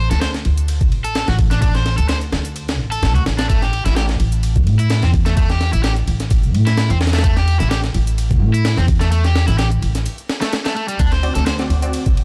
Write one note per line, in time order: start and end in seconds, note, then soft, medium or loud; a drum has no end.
0.11 0.42 D2 medium
0.11 0.20 A4 medium
0.11 snare soft
0.11 closed hi-hat medium
0.21 0.29 C5 medium
0.21 snare loud
0.21 closed hi-hat soft
0.21 ride medium
0.34 snare soft
0.34 closed hi-hat soft
0.45 0.92 D2 medium
0.45 ride medium
0.58 closed hi-hat medium
0.68 closed hi-hat soft
0.68 ride medium
0.81 kick medium
0.81 closed hi-hat soft
0.92 1.24 A1 medium
0.92 ride medium
1.04 1.27 A4 medium
1.04 closed hi-hat medium
1.04 ride soft
1.15 snare loud
1.15 closed hi-hat soft
1.15 ride medium
1.28 1.94 A1 medium
1.28 1.35 F#4 medium
1.28 snare medium
1.28 closed hi-hat soft
1.39 kick medium
1.39 ride medium
1.51 1.58 D4 medium
1.51 snare soft
1.51 closed hi-hat medium
1.62 1.74 D4 medium
1.62 kick loud
1.62 closed hi-hat soft
1.62 ride medium
1.75 1.97 C5 medium
1.75 snare soft
1.75 closed hi-hat soft
1.86 snare soft
1.86 ride medium
1.98 2.29 D2 medium
1.98 2.08 A4 medium
1.98 closed hi-hat medium
1.98 ride soft
2.09 2.17 C5 medium
2.09 snare loud
2.09 closed hi-hat soft
2.09 ride medium
2.21 closed hi-hat soft
2.33 2.79 D2 medium
2.33 snare medium
2.33 ride medium
2.45 closed hi-hat medium
2.56 closed hi-hat soft
2.56 ride medium
2.68 snare loud
2.68 closed hi-hat soft
2.68 ride medium
2.79 3.02 A1 medium
2.92 3.14 A4 medium
2.92 closed hi-hat medium
2.92 ride medium
3.02 3.15 A1 medium
3.02 snare loud
3.02 closed hi-hat soft
3.02 ride medium
3.15 3.24 D2 medium
3.15 3.22 F#4 medium
3.15 closed hi-hat soft
3.15 ride soft
3.26 3.82 A1 medium
3.26 snare loud
3.26 ride medium
3.38 3.45 D4 medium
3.38 snare loud
3.38 closed hi-hat medium
3.38 ride medium
3.49 3.61 A3 medium
3.49 kick loud
3.49 closed hi-hat soft
3.49 ride medium
3.62 3.84 G4 medium
3.62 snare soft
3.62 closed hi-hat soft
3.73 ride medium
3.85 4.17 A1 medium
3.85 3.95 E4 medium
3.85 snare soft
3.85 closed hi-hat medium
3.96 4.04 G4 medium
3.96 snare loud
3.96 closed hi-hat soft
3.96 ride medium
4.09 snare soft
4.09 closed hi-hat soft
4.20 4.67 A1 medium
4.20 ride medium
4.32 closed hi-hat medium
4.43 closed hi-hat soft
4.43 ride medium
4.56 kick medium
4.56 closed hi-hat soft
4.67 4.99 A2 medium
4.67 ride medium
4.79 5.02 E4 medium
4.79 closed hi-hat medium
4.79 ride soft
4.90 snare loud
4.90 closed hi-hat soft
4.90 ride medium
5.02 5.69 E2 medium
5.02 5.10 C4 medium
5.02 snare medium
5.02 closed hi-hat soft
5.14 kick medium
5.14 ride medium
5.26 5.33 A3 medium
5.26 snare soft
5.26 closed hi-hat medium
5.37 5.49 A3 loud
5.37 kick loud
5.37 closed hi-hat soft
5.37 ride medium
5.50 5.72 G4 medium
5.50 snare soft
5.50 closed hi-hat soft
5.61 snare medium
5.61 ride medium
5.73 6.04 A1 medium
5.73 5.83 E4 medium
5.73 closed hi-hat medium
5.73 ride soft
5.83 5.92 G4 medium
5.83 snare loud
5.83 closed hi-hat soft
5.83 ride medium
5.96 closed hi-hat soft
6.08 6.54 A1 medium
6.08 ride medium
6.20 snare soft
6.20 closed hi-hat medium
6.30 kick loud
6.30 closed hi-hat soft
6.30 ride medium
6.43 closed hi-hat soft
6.54 6.87 A2 medium
6.54 ride medium
6.67 6.89 E4 medium
6.67 snare soft
6.67 closed hi-hat medium
6.77 snare loud
6.77 closed hi-hat soft
6.77 ride medium
6.90 7.57 E2 medium
6.90 6.97 C4 medium
6.90 closed hi-hat soft
6.90 ride soft
7.01 snare medium
7.01 ride medium
7.07 snare medium
7.07 ride medium
7.13 7.20 A3 medium
7.13 snare medium
7.13 closed hi-hat medium
7.13 ride medium
7.19 snare medium
7.19 ride medium
7.24 7.36 A3 medium
7.24 kick loud
7.24 closed hi-hat soft
7.24 ride medium
7.37 7.59 G4 medium
7.37 snare soft
7.37 closed hi-hat soft
7.48 ride medium
7.60 7.91 A1 medium
7.60 7.70 E4 medium
7.60 snare soft
7.60 closed hi-hat medium
7.70 7.79 G4 medium
7.70 snare loud
7.70 closed hi-hat soft
7.70 ride medium
7.84 snare soft
7.84 closed hi-hat soft
7.94 8.42 A1 medium
7.94 ride medium
8.07 closed hi-hat medium
8.18 closed hi-hat soft
8.18 ride medium
8.31 kick medium
8.31 closed hi-hat soft
8.42 8.74 A2 medium
8.54 8.76 E4 medium
8.54 closed hi-hat medium
8.65 snare loud
8.65 closed hi-hat soft
8.65 ride medium
8.77 9.44 E2 medium
8.77 8.84 C4 medium
8.77 snare medium
8.77 closed hi-hat soft
8.88 kick medium
8.88 ride medium
9.01 9.08 A3 medium
9.01 snare soft
9.01 closed hi-hat medium
9.12 9.24 A3 medium
9.12 closed hi-hat soft
9.12 ride medium
9.24 9.47 G4 medium
9.24 snare soft
9.24 closed hi-hat soft
9.36 snare loud
9.36 ride medium
9.48 9.79 A1 medium
9.48 9.58 E4 medium
9.48 snare soft
9.48 closed hi-hat medium
9.58 9.67 G4 medium
9.58 snare loud
9.58 closed hi-hat medium
9.58 ride medium
9.71 closed hi-hat soft
9.82 10.06 A1 medium
9.82 ride medium
9.95 snare soft
9.95 closed hi-hat medium
10.06 closed hi-hat medium
10.06 ride medium
10.18 closed hi-hat soft
10.29 snare medium
10.29 ride medium
10.41 10.51 A3 medium
10.41 snare loud
10.41 closed hi-hat medium
10.41 ride medium
10.53 snare loud
10.53 closed hi-hat soft
10.53 ride medium
10.65 10.72 A3 medium
10.65 snare loud
10.65 closed hi-hat soft
10.65 ride medium
10.76 10.87 A3 medium
10.76 ride medium
10.88 10.98 G3 medium
10.88 closed hi-hat medium
10.99 11.32 D2 medium
10.99 11.11 D4 medium
10.99 kick loud
10.99 closed hi-hat medium
10.99 ride medium
11.12 11.34 C5 medium
11.12 snare soft
11.12 closed hi-hat soft
11.23 11.37 C4 medium
11.23 11.37 F#4 medium
11.23 11.37 D5 medium
11.23 ride medium
11.35 11.67 D2 medium
11.35 11.45 A4 medium
11.35 snare soft
11.35 closed hi-hat medium
11.46 11.54 C5 medium
11.46 snare loud
11.46 closed hi-hat medium
11.46 ride medium
11.59 11.80 C4 medium
11.59 11.80 F#4 medium
11.59 11.80 D5 medium
11.59 snare soft
11.59 closed hi-hat soft
11.70 12.17 D2 medium
11.70 ride medium
11.82 12.03 C4 medium
11.82 12.03 F#4 medium
11.82 12.03 D5 medium
11.82 closed hi-hat medium
11.93 closed hi-hat medium
11.93 ride medium
12.06 kick medium
12.06 closed hi-hat soft
12.17 12.24 A1 medium
12.17 ride medium